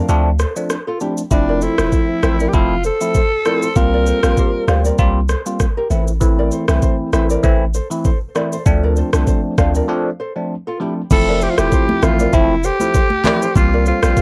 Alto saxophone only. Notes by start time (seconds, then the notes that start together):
1.33 D4
1.63 E4
2.49 G4
2.55 F4
2.86 A4
3.77 A#4
11.12 A4
11.43 G4
11.50 F4
11.58 G4
12.04 F4
12.34 E4
12.65 G4
13.57 F4
13.88 F4